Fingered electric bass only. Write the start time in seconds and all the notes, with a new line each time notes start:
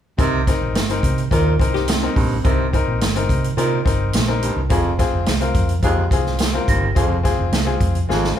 0.19 C2
0.61 A#1
0.74 G1
1.03 C3
1.31 D#2
1.60 C2
2.16 A#1
2.45 C2
2.87 A#1
3.01 G1
3.29 C3
3.57 C3
3.86 G1
4.14 A#1
4.56 C2
4.70 F1
5.13 F1
5.27 C2
5.55 F2
5.83 F2
6.11 C2
6.68 G1
6.97 F1
7.39 F1
7.52 C2
7.81 F2
8.09 G#1